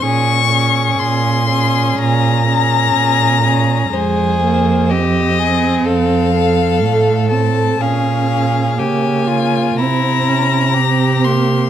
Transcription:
<<
  \new Staff \with { instrumentName = "Violin" } { \time 4/4 \key f \minor \tempo 4 = 62 des'''4 c'''4 bes''2 | c''4 ees''4 f''4. a''8 | f''4 aes''4 bes''4. c'''8 | }
  \new Staff \with { instrumentName = "Violin" } { \time 4/4 \key f \minor aes'8 aes'4 aes'4 aes'4 aes'8 | aes'4 g'8 aes'8 a'8 a'4. | aes'4 g'8 f'8 e'4 g'4 | }
  \new Staff \with { instrumentName = "Viola" } { \time 4/4 \key f \minor des'8 des'4 des'4 des'4 des'8 | aes8 bes8 c'2 a8 c'8 | des'4 bes4 c'8 des'8 c'8 bes8 | }
  \new Staff \with { instrumentName = "Cello" } { \clef bass \time 4/4 \key f \minor bes,4 bes,4 bes,4 bes,4 | f,2 f,4 a,4 | bes,4 des4 c2 | }
>>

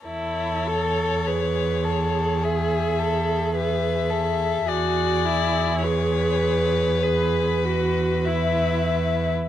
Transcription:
<<
  \new Staff \with { instrumentName = "Violin" } { \time 4/4 \key a \major \tempo 4 = 50 cis''2 e''4 e''4 | d''4 cis''4 b'4 e''4 | }
  \new Staff \with { instrumentName = "Violin" } { \time 4/4 \key a \major a'4 b'8 a'8 gis'8 a'8 b'8 a'8 | gis'4 b'2 b'4 | }
  \new Staff \with { instrumentName = "Viola" } { \time 4/4 \key a \major e'8 a'8 gis'2. | fis'8 e'8 gis'4 gis'8 fis'8 e'4 | }
  \new Staff \with { instrumentName = "Cello" } { \clef bass \time 4/4 \key a \major e,1 | e,1 | }
>>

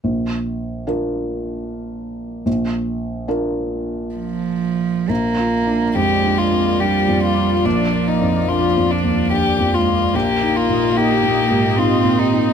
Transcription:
<<
  \new Staff \with { instrumentName = "Analog synth pad" } { \time 3/4 \key bes \mixolydian \tempo 4 = 72 r2. | r2. | <bes f' d''>2.~ | <bes f' d''>2. |
<bes g' ees''>2. | }
  \new Staff \with { instrumentName = "Violin" } { \time 3/4 \key bes \mixolydian r2. | r2. | r4 g'8 f'8 g'8 f'8 | d'8 ees'8 f'8 d'8 g'8 f'8 |
g'8 f'8 g'4 f'8 ees'8 | }
  \new Staff \with { instrumentName = "Felt piano" } { \time 3/4 \key bes \mixolydian bes,,4 <d' f' bes'>2 | bes,,4 <d' f' bes'>2 | \tuplet 3/2 { bes,,8 f'8 d'8 f,8 d'8 c'8 d'8 f,8 f'8 } | \tuplet 3/2 { bes,,8 d''8 f,8 d'8 f,8 ees,8 d'8 f,8 f'8 } |
\tuplet 3/2 { bes,,8 ees'8 bes,8 ees'8 bes,8 aes,8 ees'8 bes,8 ees'8 } | }
  \new Staff \with { instrumentName = "Cello" } { \clef bass \time 3/4 \key bes \mixolydian r2. | r2 f4 | bes4 aes4 g4 | f4 f4 r8 aes8 |
bes2 c'4 | }
>>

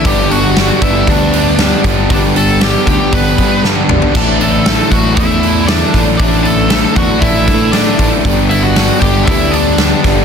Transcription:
<<
  \new Staff \with { instrumentName = "Lead electric guitar" } { \time 4/4 \key g \lydian \tempo 4 = 117 <g' g''>8 <fis' fis''>4 <e' e''>8 <d' d''>4. r8 | <d' d''>8 <a' a''>8 <g' g''>8 <g' g''>8 <b' b''>4 r4 | <d' d''>8 <a' a''>4 <fis' fis''>8 <e' e''>4 <d' d''>8. r16 | <d' d''>8 <a' a''>4 <fis' fis''>8 <e' e''>4 <d' d''>8. r16 |
r8 <e' e''>16 <fis' fis''>8. <g' g''>8 <e' e''>8 <d' d''>4 r8 | }
  \new Staff \with { instrumentName = "Clean electric guitar" } { \time 4/4 \key g \lydian <g, d g b d' g'>8 <g b d'>8 <g, d g b d' g'>8 <g b d' g'>4. <g b d' g'>8 <g b d' g'>8 | <g, d g b d' g'>8 <g b d' g'>8 <g, d g b d' g'>8 <g b d' g'>4. <g b d' g'>8 <g b d' g'>8 | <a, d a d' e'>8 <a d' e'>8 <a, d a d' e'>8 <a d' e'>4. <d a d' e'>8 <a d' e'>8 | <a, d a d' e'>8 <a d' e'>8 <a, d a d' e'>8 <a d' e'>4. <d a d' e'>8 <a d' e'>8 |
<g, d g b d' g'>8 <g b d'>8 <g, d g b d' g'>8 <g b d' g'>4. <g b d' g'>8 <g b d' g'>8 | }
  \new Staff \with { instrumentName = "Overdriven electric guitar" } { \time 4/4 \key g \lydian <g, d g b d'>8 <g b d'>8 <g, d g b d'>8 <g b d'>4. <d g b d'>8 <g b d'>8 | <g, d g b d'>8 <g b d'>8 <g, d g b d'>8 <g b d'>4. <d g b d'>8 <g b d'>8 | <a, d e a d'>8 <e a d'>8 <a, d e a d'>8 <e a d'>4. <d e a d'>8 <e a d'>8 | <a, d e a d'>8 <e a d'>8 <a, d e a d'>8 <e a d'>4. <d e a d'>8 <e a d'>8 |
<g, d g b d'>8 <g b d'>8 <g, d g b d'>8 <g b d'>4. <d g b d'>8 <g b d'>8 | }
  \new Staff \with { instrumentName = "Overdriven electric guitar" } { \clef bass \time 4/4 \key g \lydian <g, d g b d'>8 <g b d'>8 <d g b d'>8 <g, d g b d'>8 <d g b d'>8 <g, d g b d'>8 <d g b d'>8 <g b d'>8 | <g, d g b d'>8 <g b d'>8 <d g b d'>8 <g, d g b d'>8 <d g b d'>8 <g, d g b d'>8 <d g b d'>8 <g b d'>8 | <a, d e a d'>8 <e a d'>8 <d e a d'>8 <a, d e a d'>8 <d e a d'>8 <a, d e a d'>8 <d e a d'>8 <e a d'>8 | <a, d e a d'>8 <e a d'>8 <d e a d'>8 <a, d e a d'>8 <d e a d'>8 <a, d e a d'>8 <d e a d'>8 <e a d'>8 |
<g, d g b d'>8 <g b d'>8 <d g b d'>8 <g, d g b d'>8 <d g b d'>8 <g, d g b d'>8 <d g b d'>8 <g b d'>8 | }
  \new Staff \with { instrumentName = "Picked electric bass" } { \clef bass \time 4/4 \key g \lydian g,,4. g,,8 d,4. g,,8 | g,,4. d,16 r16 g,,8 g,4 gis,,16 r16 | a,,4. a,,8 e,4. a,,8 | a,,4. e,16 r16 a,,8 a,4 a,,16 r16 |
g,,4. g,,8 d,4. g,,8 | }
  \new DrumStaff \with { instrumentName = "Drums" } \drummode { \time 4/4 <hho bd>8 hho8 <hho sn>8 <hho bd>8 <hho bd>8 hho8 <hho sn>8 <hho bd>8 | <hho bd>8 hho8 <hho sn>8 <hho bd>8 <hho bd>8 <hho bd>8 sn8 toml16 tomfh16 | <cymc bd>8 hho8 <hho sn>8 <hho bd>8 <hho bd>8 hho8 <hho sn>8 <hho bd sn>8 | <hho bd>8 hho8 <hho sn>8 <hho bd>8 <hho bd>8 <hho bd>8 <hho sn>8 <hho bd>8 |
<hho bd>8 hho8 <hho sn>8 <hho bd>8 <hho bd>8 hho8 <hho sn>8 <hho bd sn>8 | }
>>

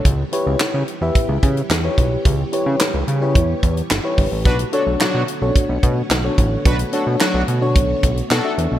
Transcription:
<<
  \new Staff \with { instrumentName = "FM electric piano" } { \time 4/4 \key b \minor \tempo 4 = 109 r8 <e' g' b' cis''>4 r16 <e' g' b' e''>4 r8 <e' g' b' cis''>8.~ | <e' g' b' cis''>16 r16 <e' g' b' cis''>4 r16 <e' g' b' cis''>4 r8 <e' g' b' cis''>8. | r8 <d' fis' a' cis''>4 r16 <cis' d' fis' a' cis''>4 r8 <d' fis' a' cis''>8.~ | <d' fis' a' cis''>16 r16 <d' fis' a' cis''>4 r16 <d' fis' a' cis''>4 r8 <d' fis' a' e''>8. | }
  \new Staff \with { instrumentName = "Analog polysynth" } { \time 4/4 \key b \minor r1 | r1 | <d' fis' b'>16 r16 <d' fis' a'>16 r16 <fis d' fis'>8 r2 r8 | <d' fis' b'>16 r16 <d' fis' a'>16 r16 <fis d' fis'>8 r4. <d' fis' a'>8 r8 | }
  \new Staff \with { instrumentName = "String machine" } { \time 4/4 \key b \minor << { <b cis''>1~ | <b cis''>1~ | <b cis''>1~ | <b cis''>1 | } \\ { <e g g'>1~ | <e g g'>1 | <d a fis'>1~ | <d a fis'>1 | } >> }
  \new Staff \with { instrumentName = "Analog synth bass" } { \clef bass \time 4/4 \key b \minor cis,8 r16 cis,16 cis16 cis16 r16 e,16 r16 cis,16 cis8 e,8 b,,8 | cis,8 r16 cis16 r16 cis,16 cis8 e,8 e,8 g,,16 r16 g,,16 a,,16 | b,,8 r16 b,,16 b,16 b,16 r16 b,,16 r16 b,,16 b,8 b,,8 a,,8 | b,,8 r16 b,16 r16 b,,16 b,8 b,,8 b,,8 b,16 r16 e,16 b,,16 | }
  \new DrumStaff \with { instrumentName = "Drums" } \drummode { \time 4/4 <hh bd>8 hh8 <hc hh sn>8 hh8 <hh bd>8 <hh bd>16 hh16 <hc hh sn>8 <hh bd>8 | <hh bd>8 hh8 <hc hh sn>8 hh8 <hh bd>8 <hh bd>16 hh16 <hc hh sn>8 <hho bd>8 | <hh bd>16 hh16 hh8 <hc hh sn>8 hh8 <hh bd>8 <hh bd>8 <hc hh sn>8 <hh bd>8 | <hh bd>16 hh16 hh8 <hc hh sn>8 hh8 <hh bd>8 <hh bd>16 hh16 <hc hh sn>8 hh8 | }
>>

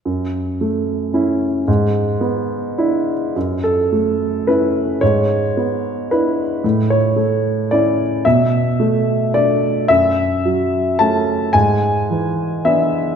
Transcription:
<<
  \new Staff \with { instrumentName = "Upright piano" } { \time 3/4 \key fis \minor \tempo 4 = 110 r2. | r2. | r8 a'4. b'4 | cis''2 b'4 |
r8 cis''4. d''4 | e''2 d''4 | e''2 a''4 | gis''2 e''4 | }
  \new Staff \with { instrumentName = "Upright piano" } { \time 3/4 \key fis \minor fis,4 a4 <cis' e'>4 | gis,4 b4 <d' e'>4 | fis,4 a4 <cis' e'>4 | gis,4 b4 <d' e'>4 |
a,4 a4 <cis' e'>4 | b,4 a4 <a d'>4 | fis,4 fis4 <a cis'>4 | gis,4 e4 <b d'>4 | }
>>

